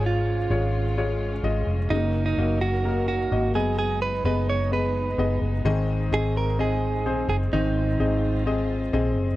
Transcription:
<<
  \new Staff \with { instrumentName = "Clean electric guitar" } { \time 4/4 \key aes \mixolydian \tempo 4 = 128 f'2 r2 | ees'8. ees'8. ges'4 ges'4 aes'8 | aes'8 ces''8 ces''8 des''8 ces''4. r8 | r4 aes'8 bes'8 aes'4. aes'8 |
ees'2 r2 | }
  \new Staff \with { instrumentName = "Grand piano" } { \time 4/4 \key aes \mixolydian <aes f' des''>8 r8 <aes f' des''>8 r8 <aes f' des''>8 r8 <aes f' ees''>8 r8 | <aes bes ges' ees''>8 r8 <bes ges' ees''>8 r8 <bes ges' bes'>8 r8 <bes ges' ees''>8 <ces' aes' ees''>8~ | <ces' aes' ees''>8 r8 <ces' aes' ees''>8 r8 <ces' aes' ees''>8 r8 <ces' aes' ees''>8 r8 | <c' aes' ees''>8 r8 <c' aes' ees''>8 r8 <c' aes' ees''>8 r8 <c' aes' c''>8 r8 |
<c' aes' ees''>8 r8 <c' aes' ees''>8 r8 <c' aes' ees''>8 r8 <c' aes' ees''>8 r8 | }
  \new Staff \with { instrumentName = "Grand piano" } { \clef bass \time 4/4 \key aes \mixolydian aes,4 r2. | des4. r2 ges8~ | ges4 r2. | <aes, ees>4. r2 r8 |
<aes, ees>4. r2 r8 | }
  \new Staff \with { instrumentName = "String section" } { \time 4/4 \key aes \mixolydian << { <des' f'>1 | <ges ees' bes'>2.~ <ges ees' bes'>8 ces'8~ | ces'1 | c'1 |
f'1 | } \\ { aes1 | r2. r8 aes8~ | aes1~ | aes1~ |
aes1 | } >> }
  \new Staff \with { instrumentName = "Fingered electric bass" } { \clef bass \time 4/4 \key aes \mixolydian aes,,4 aes,,2 aes,,8 f,,8 | ges,,4 ges,,2 aes,,8 ges,,8~ | ges,,4 ges,,2 ges,,8 ges,,8 | aes,,4 aes,,2 bes,,8 ges,,8 |
aes,,4 aes,,2 bes,,8 ges,,8 | }
>>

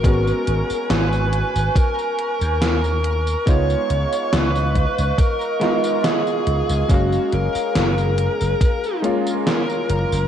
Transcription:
<<
  \new Staff \with { instrumentName = "Ambient pad" } { \time 4/4 \key gis \dorian \tempo 4 = 70 << { <gis'' cis'''>1 | <dis'' cis'''>1 | <gis' ais''>1 | } \\ { r1 | eis''1~ | eis''1 | } >> }
  \new Staff \with { instrumentName = "Lead electric guitar" } { \time 4/4 \key gis \dorian ais'4 b'4 ais'4 ais'4 | cis''4 b'4 ais'4 gis'4 | fis'8 ais'2 r8 ais'4 | }
  \new Staff \with { instrumentName = "Electric grand piano" } { \time 4/4 \key gis \dorian <gis b cis' fis'>2~ <gis b cis' fis'>8 r4. | <gis b dis' eis'>2~ <gis b dis' eis'>8 <gis b dis' eis'>4. | <gis ais cis' eis''>2~ <gis ais cis' eis''>8 <gis ais cis' eis'>4. | }
  \new Staff \with { instrumentName = "Slap bass" } { \clef bass \time 4/4 \key gis \dorian gis,,16 r16 gis,,16 r16 gis,,8 r16 gis,,16 r8. dis,4 r16 | cis,16 r16 cis,16 r16 cis,8 r16 cis,16 r4. cis,16 cis,16 | fis,,16 r16 fis,,16 r16 fis,,8 r16 fis,,16 r4. fis,,16 fis,,16 | }
  \new DrumStaff \with { instrumentName = "Drums" } \drummode { \time 4/4 <hh bd tamb>16 tamb16 hh16 tamb16 <hh sn tamb>16 tamb16 hh16 tamb16 <hh bd tamb>16 tamb16 hh16 tamb16 <hh sn tamb>16 tamb16 hh16 tamb16 | <hh bd tamb>16 tamb16 hh16 tamb16 <hh sn tamb>16 tamb16 <hh bd>16 tamb16 <hh bd tamb>16 tamb16 <hh sn>16 tamb16 <hh sn tamb>16 tamb16 hh16 tamb16 | <hh bd tamb>16 tamb16 hh16 tamb16 <hh sn tamb>16 tamb16 hh16 tamb16 <hh bd tamb>16 tamb16 hh16 tamb16 <hh sn tamb>16 tamb16 hh16 tamb16 | }
>>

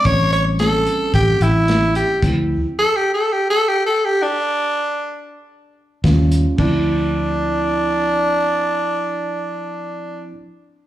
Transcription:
<<
  \new Staff \with { instrumentName = "Tenor saxophone" } { \time 4/4 \key d \minor \tempo 4 = 110 cis''8 cis''8 a'4 g'8 e'4 g'8 | r4 \tuplet 3/2 { a'8 g'8 a'8 g'8 a'8 g'8 a'8 g'8 d'8~ } | d'4. r2 r8 | d'1~ |
d'1 | }
  \new Staff \with { instrumentName = "Tine electric piano" } { \time 4/4 \key d \minor <g bis cis'>1 | <f c' e'>4 r2. | r2. <g des' f'>4 | <f c' e'>1~ |
<f c' e'>1 | }
  \new Staff \with { instrumentName = "Fingered electric bass" } { \clef bass \time 4/4 \key d \minor a,,2 a,,8 a,,4. | d,4 r2. | r2. ees,4 | d,1~ |
d,1 | }
  \new DrumStaff \with { instrumentName = "Drums" } \drummode { \time 4/4 <hh bd>8 hh8 <hh sn>8 hh8 <hh bd>8 hh8 <hh sn>8 hh8 | <cymc hh bd>4 r4 r4 r4 | r4 r4 r4 <hh bd sn>8 hh8 | <cymc bd>4 r4 r4 r4 |
r4 r4 r4 r4 | }
>>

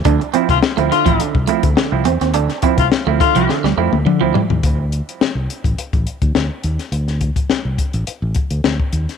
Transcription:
<<
  \new Staff \with { instrumentName = "Tenor saxophone" } { \time 4/4 \key d \minor \tempo 4 = 105 r8. f'16 r8 f'8. r4. r16 | r8. f'16 r8 f'8. r4. r16 | r1 | r1 | }
  \new Staff \with { instrumentName = "Clav" } { \time 4/4 \key d \minor r8 <f c' e'>16 <c' e'>16 r16 <f c' e'>16 r16 <f c' e'>16 r8 <f c' e'>16 <c' e'>16 r16 <f c' e'>16 <c' e'>16 r16 | r8 <f c' e'>16 <c' e'>16 r16 <f c' e'>16 r16 <f c' e'>16 r8 <f c' e'>16 <c' e'>16 r16 <f c' e'>16 <c' e'>16 r16 | r1 | r1 | }
  \new Staff \with { instrumentName = "Clav" } { \clef bass \time 4/4 \key d \minor d8 r4 d8 d8 r8 d8 r8 | d8 r4 d8 d8 r8 d8 r8 | r1 | r1 | }
  \new Staff \with { instrumentName = "Clean electric guitar" } { \time 4/4 \key d \minor d'16 r16 c'16 r8 a16 r16 f16 r8 a16 r8. c'16 c'16 | d'16 r16 c'16 r8 a16 r16 f16 r16 g16 a16 r8 f16 g16 r16 | r1 | r1 | }
  \new Staff \with { instrumentName = "Fingered electric bass" } { \clef bass \time 4/4 \key d \minor d,16 r8 c,16 r16 d,16 r16 a,,16 r16 c,16 r16 d,16 r16 c,16 e,16 ees,16 | d,16 r8 c,16 r16 d,16 r16 c,16 r16 d,16 f,16 d,16 d16 d,16 r16 ees,16 | d,8. r8 c,16 r16 a,,16 r16 a,,16 r16 d,16 d,16 r16 ees,16 r16 | d,8. r8 c,16 r16 a,,16 r16 a,,16 r16 d,16 d,16 r16 ees,16 r16 | }
  \new DrumStaff \with { instrumentName = "Drums" } \drummode { \time 4/4 <hh bd>16 hh16 hh16 <hh bd>16 sn16 hh16 hh16 <hh bd>16 hh16 bd16 hh16 <hh bd>16 sn8 hh16 <hh sn>16 | hh16 <hh sn>16 <hh bd>16 <hh bd>16 sn8 <hh bd>16 hh16 sn16 sn8 tommh16 toml8 tomfh16 tomfh16 | <hh bd>8 hh16 hh16 sn8 hh16 <hh bd>16 hh16 <hh bd>16 hh16 <hh bd>16 sn8 hh16 <hh sn>16 | hh16 <hh sn>16 <hh bd>16 <hh bd>16 sn8 <hh bd>16 hh16 hh8 <hh bd>16 hh16 sn16 bd16 hh16 <hh sn>16 | }
>>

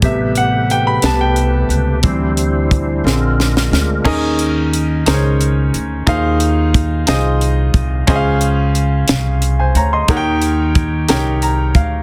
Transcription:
<<
  \new Staff \with { instrumentName = "Grand piano" } { \time 6/8 \key a \dorian \tempo 4. = 60 << { e''8 fis''8 g''16 b''16 a''16 g''4~ g''16~ | g''4~ g''16 r4. r16 | \key ees \mixolydian r2. | r2. |
r2 r16 <c'' aes''>16 <des'' bes''>16 <ees'' c'''>16~ | <ees'' c'''>16 r4. r16 bes''8 f''8 | } \\ { r2. | r2. | <des' ees' aes' bes' ees''>4 r8 <des' ees' aes' bes' c'' des''>4 r8 | <ees' f' aes' c'' f''>4 r8 <ees' f' aes' c'' ees''>4 r8 |
<des' f' aes' c'' ees'' f''>4 r2 | <ees' g' bes' des'' ges'' g''>4 r8 <ees' g' bes' des'' g''>4 r8 | } >> }
  \new Staff \with { instrumentName = "Grand piano" } { \clef bass \time 6/8 \key a \dorian <c g b>4. <c g b>8 r4 | <e g c'>4. <d aes c'>4. | \key ees \mixolydian ees4. r4. | ees4. r4. |
des4. r4. | ees4. r4. | }
  \new Staff \with { instrumentName = "Tonewheel organ" } { \time 6/8 \key a \dorian <c a g' b'>2. | <g d' e' c''>4. <aes cis' d' f' bes'>4. | \key ees \mixolydian r2. | r2. |
r2. | r2. | }
  \new Staff \with { instrumentName = "Upright bass" } { \clef bass \time 6/8 \key a \dorian a,,4. c,4 cis,8 | d,4. bes,,4 d,8 | \key ees \mixolydian ees,4. des,4 d,8 | ees,4. c,4 c,8 |
des,4. c,4 d,8 | ees,4. c,4 d,8 | }
  \new DrumStaff \with { instrumentName = "Drums" } \drummode { \time 6/8 <hh bd>8 hh8 hh8 <hh sn>8 hh8 hh8 | <hh bd>8 hh8 <hh bd>8 sn8 sn16 sn16 sn8 | <cymc bd>8 hh8 hh8 <hh sn>8 hh8 hh8 | <hh bd>8 hh8 <hh bd>8 <hh sn>8 hh8 <hh bd>8 |
<hh bd>8 hh8 hh8 <hh sn>8 hh8 hh8 | <hh bd>8 hh8 <hh bd>8 <hh sn>8 hh8 <hh bd>8 | }
>>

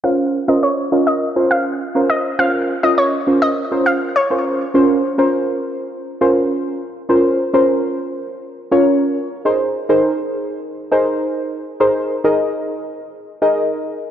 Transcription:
<<
  \new Staff \with { instrumentName = "Synth pluck" } { \time 4/4 \key bes \minor \tempo 4 = 102 f''16 r8 ees''16 des''16 r8 ees''8 r16 f''16 r8. ees''16 r16 | f''16 r8 ees''16 des''16 r8 ees''8 r16 f''16 r16 des''8. r16 | r1 | r1 |
r1 | r1 | }
  \new Staff \with { instrumentName = "Synth stab" } { \time 4/4 \key bes \minor <des' f' bes' c''>8 r16 <des' f' bes' c''>8 r16 <des' f' bes' ees''>8 r16 <des' f' bes' c''>8. r16 <des' f' bes' c''>8 r16 | <des' f' bes' c''>8 r16 <des' f' bes' ees''>8 r16 <des' f' bes' c''>8 r16 <des' f' bes' c''>8. r16 <des' f' bes' c''>8 r16 | <des' f' bes' c''>8 r16 <des' f' bes' c''>4~ <des' f' bes' c''>16 r8 <des' f' bes' c''>4~ <des' f' bes' c''>16 r16 | <des' f' bes' c''>8 r16 <des' f' bes' c''>4. r8 <des' f' bes' des''>4 r16 |
<ees' aes' bes' c''>8 r16 <ees' aes' bes' c''>4~ <ees' aes' bes' c''>16 r8 <ees' aes' bes' c''>4~ <ees' aes' bes' c''>16 r16 | <ees' aes' bes' c''>8 r16 <ees' aes' bes' ees''>4. r8 <ees' aes' bes' ees''>4 r16 | }
>>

